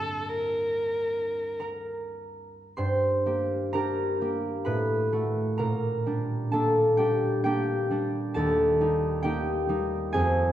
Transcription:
Already playing: harp G2 A#3 D4 G4, violin A4
0.28 violin A#4
1.60 harp A#4 A#5
2.77 harp G2 C5 C6
3.26 harp A#3 G4
3.73 harp D4 G4 A#4 A#5
4.21 harp A#3 G4
4.65 harp A2 B4 B5
5.12 harp A3 F#4
5.58 harp A#2 A#4 A#5
6.06 harp G3 D4
6.52 harp A#3 D4 A4 A5
6.97 harp G3 D4 G4 G5
7.44 harp A#3 D4 G4 G5
7.91 harp G3 D4
8.34 harp D#2 A4 A5
8.81 harp G3 D#4
9.23 harp A#3 D#4 G4 G5
9.69 harp G3 D#4
10.13 harp F2 G#4 G#5

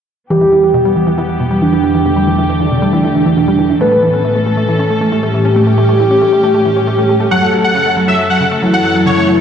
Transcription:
0.30 string section E2 E3 B3 G4, synth pluck E3, soft synth lead G4
0.41 synth pluck E3
0.52 synth pluck E3
0.63 synth pluck E3
0.74 synth pluck B2
0.85 synth pluck G3
0.96 synth pluck E3
1.07 synth pluck E3
1.18 synth pluck E3
1.29 synth pluck E3
1.40 synth pluck B2
1.51 synth pluck G3
1.62 synth pluck E3, soft synth lead D4
1.73 synth pluck E3
1.84 synth pluck E3
1.95 synth pluck E3
2.06 synth pluck B2, string section A3
2.17 synth pluck G3
2.27 synth pluck E3
2.38 synth pluck E3
2.49 synth pluck E3
2.60 synth pluck E3
2.71 synth pluck B2
2.82 synth pluck G3
2.93 synth pluck E3
3.04 synth pluck E3
3.15 synth pluck E3
3.26 synth pluck E3
3.37 synth pluck B2
3.48 synth pluck G3
3.59 synth pluck E3
3.70 synth pluck E3
3.81 string section A2 C#4 A4, synth pluck A3, soft synth lead B4
3.92 synth pluck A3
4.03 synth pluck E3
4.13 synth pluck C#4
4.24 synth pluck A3
4.35 synth pluck A3
4.46 synth pluck A3
4.57 synth pluck A3
4.68 synth pluck E3
4.79 synth pluck C#4
4.90 synth pluck A3
5.01 synth pluck A3
5.12 synth pluck A3, soft synth lead G4
5.23 synth pluck A3
5.34 synth pluck E3
5.45 synth pluck C#4
5.56 synth pluck A3, string section G4
5.67 synth pluck A3
5.78 synth pluck A3
5.89 synth pluck A3
6.00 synth pluck E3
6.11 synth pluck C#4
6.22 synth pluck A3
6.33 synth pluck A3
6.44 synth pluck A3
6.54 synth pluck A3
6.65 synth pluck E3
6.76 synth pluck C#4
6.87 synth pluck A3
6.98 synth pluck A3
7.09 synth pluck A3
7.20 synth pluck A3
7.31 string section F#2 F#3 A4, synth pluck F#3, soft synth lead A4, supersaw synth F#5
7.42 synth pluck F#3
7.53 synth pluck F#3
7.64 synth pluck F#3, supersaw synth F#5
7.75 synth pluck C#3
7.86 synth pluck A3
7.97 synth pluck F#3
8.08 synth pluck F#3, supersaw synth E5
8.19 synth pluck F#3
8.30 synth pluck F#3, supersaw synth F#5
8.41 synth pluck C#3
8.52 synth pluck A3
8.62 synth pluck F#3, soft synth lead E4
8.73 synth pluck F#3, supersaw synth F#5
8.84 synth pluck F#3
8.95 synth pluck F#3
9.06 synth pluck C#3, supersaw synth C#5
9.17 synth pluck A3
9.28 synth pluck F#3

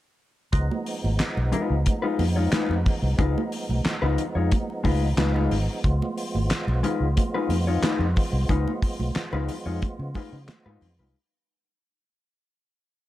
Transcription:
0.52 fingered electric bass C#2, tonewheel organ F3 G#3 B3 D#4, kick, closed hi-hat, muted conga
0.71 high conga
0.86 open hi-hat
1.04 fingered electric bass G#1, high conga
1.19 muted fingered electric bass stroke, snare, clap, closed hi-hat, muted conga
1.37 fingered electric bass B1, muted conga
1.52 clean electric guitar G#3 D#4 F4 B4, closed hi-hat, low conga
1.70 fingered electric bass C#2
1.86 kick, closed hi-hat, muted conga, high conga
2.02 clean electric guitar G#3 D#4 F4 B4
2.19 fingered electric bass F2, open hi-hat, high conga
2.36 clean electric guitar G#3 D#4 F4 C#5
2.52 clean electric guitar G#3 D#4 F4 B4, muted fingered electric bass stroke, snare, clap, closed hi-hat, muted conga, high conga
2.70 fingered electric bass F2, muted conga, high conga
2.86 kick, open hi-hat, low conga
3.02 fingered electric bass C2
3.18 fingered electric bass C#2, clean electric guitar G#3 D#4 F4 B4, kick, closed hi-hat, muted conga
3.38 muted conga, high conga
3.52 open hi-hat
3.69 fingered electric bass B1, high conga
3.85 snare, clap, closed hi-hat
4.02 fingered electric bass C#2, clean electric guitar G#3 D#4 F4 B4
4.18 closed hi-hat, low conga
4.35 fingered electric bass F2, clean electric guitar G#3 D#4 F4 C#5
4.52 kick, closed hi-hat, muted conga, high conga
4.70 muted conga
4.84 fingered electric bass C#2, clean electric guitar G#3 D#4 F4 B4, kick, open hi-hat, high conga
5.17 fingered electric bass C#2, clean electric guitar G#3 D#4 F4 B4, snare, clap, closed hi-hat, muted conga, high conga
5.35 clean electric guitar G#3 D#4 F4 B4, high conga
5.51 fingered electric bass G#1, open hi-hat, low conga
5.84 fingered electric bass C#2, tonewheel organ F4, kick, closed hi-hat, muted conga
6.02 high conga
6.18 open hi-hat
6.35 fingered electric bass G#1, high conga
6.50 muted fingered electric bass stroke, snare, clap, closed hi-hat, muted conga
6.68 fingered electric bass B1, muted conga
6.83 clean electric guitar G#3 D#4 F4 B4, closed hi-hat, low conga
7.00 fingered electric bass C#2
7.17 kick, closed hi-hat, muted conga, high conga
7.34 clean electric guitar G#3 D#4 F4 B4
7.49 fingered electric bass F2, open hi-hat, high conga
7.67 clean electric guitar G#3 D#4 F4 C#5
7.82 clean electric guitar G#3 D#4 F4 B4, muted fingered electric bass stroke, snare, clap, closed hi-hat, muted conga, high conga
7.99 fingered electric bass F2, high conga
8.16 kick, open hi-hat, low conga
8.33 fingered electric bass C2
8.49 fingered electric bass C#2, clean electric guitar G#3 D#4 F4 B4, kick, closed hi-hat, muted conga
8.68 high conga
8.82 kick, open hi-hat
8.99 fingered electric bass B1, high conga
9.15 snare, clap, closed hi-hat, muted conga
9.33 fingered electric bass C#2, clean electric guitar G#3 D#4 F4 B4, muted conga
9.49 open hi-hat, low conga
9.66 fingered electric bass F2, clean electric guitar G#3 D#4 F4 C#5
9.82 kick, closed hi-hat, high conga
9.99 fingered electric bass C#3, muted conga
10.14 clean electric guitar G#3 D#4 F4 B4, kick, open hi-hat, high conga
10.33 fingered electric bass C#3
10.48 snare, clap, closed hi-hat, muted conga, high conga
10.66 fingered electric bass G#2, clean electric guitar G#3 D#4 F4 B4, high conga
10.81 fingered electric bass F2, open hi-hat, low conga
10.99 fingered electric bass C2, clean electric guitar G#3 D#4 F4 B4

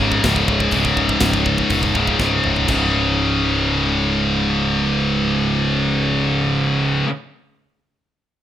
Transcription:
Already playing: distorted electric guitar C#2 G#2 C#3
0.00 picked electric bass G#1, distorted electric guitar C#2 G#2 C#3, kick
0.12 kick
0.22 picked electric bass C#1, distorted electric guitar C#2 G#2, kick, snare, open hi-hat
0.26 distorted electric guitar C#3
0.36 kick
0.48 picked electric bass C#1, kick
0.60 kick
0.71 picked electric bass C#1, distorted electric guitar C#2 G#2, kick, open hi-hat
0.76 distorted electric guitar C#3
0.85 kick
0.97 picked electric bass C#1, kick
1.09 kick
1.20 picked electric bass C#1, kick, snare, open hi-hat
1.33 kick
1.46 kick
1.58 kick
1.70 picked electric bass E1, kick, open hi-hat
1.83 kick
1.94 picked electric bass C#1, distorted electric guitar G#2 C#3, kick
1.99 distorted electric guitar C#2
2.07 kick
2.19 picked electric bass C#1, distorted electric guitar C#2 G#2, kick, snare
2.24 distorted electric guitar C#3
2.31 high tom
2.44 picked electric bass C#1, mid tom
2.56 floor tom
2.68 picked electric bass C#1, distorted electric guitar C#2 G#2 C#3, kick, crash

